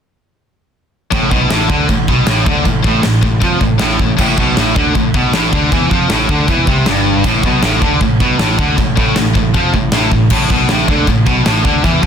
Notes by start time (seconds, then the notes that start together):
1.12 A1 A2, kick, china
1.31 B1 B2, kick
1.50 A1 A2, snare, china
1.70 D2 D3, kick
1.89 A1 A2, kick, china
2.08 B1 B2, kick
2.26 A1 A2, snare, china
2.46 D2 D3, kick
2.65 A1 A2, kick, china
2.83 A1 A2, kick
3.02 A1 A2, snare, china
3.06 A2
3.22 A1 A2, kick
3.40 F2 F3, kick, china
3.59 A1 A2, kick
3.64 A2
3.78 A1 A2, snare, china
3.98 A1 A2, kick
4.02 A2
4.18 A1 A2, kick, china, crash
4.38 B1 B2, kick
4.56 A1 A2, snare, china
4.76 D2 D3, kick
4.94 A1 A2, kick, china
5.14 B1 B2, kick
5.33 A1 A2, snare, china
5.53 D2 D3, kick
5.72 E2 E3, kick, china
5.91 F2 F3, kick
6.10 A1 A2, snare, china
6.29 D2 D3, kick
6.48 E2 E3, kick, china
6.67 C2 C3, kick
6.86 G1 G2, snare, china
7.24 A1 A2, kick, china, crash
7.43 B1 B2, kick
7.63 A1 A2, snare, china
7.82 D2 D3, kick
8.01 A1 A2, kick, china
8.20 B1 B2, kick
8.39 A1 A2, snare, china
8.58 D2 D3, kick
8.77 A1 A2, kick, china
8.96 A1 A2, kick
9.15 A1 A2, snare, china
9.34 A1 A2, kick
9.54 F2 F3, kick, china
9.74 A1 A2, kick
9.91 A1 A2, snare, china
10.12 A1 A2, kick
10.30 A1 A2, kick, crash, china
10.50 B1 B2, kick
10.69 A1 A2, snare, china
10.88 D2 D3, kick
11.07 A1 A2, kick, china
11.27 B1 B2, kick
11.45 A1 A2, snare, china
11.65 D2 D3, kick
11.84 E2 E3, kick, china
12.02 F2 F3, kick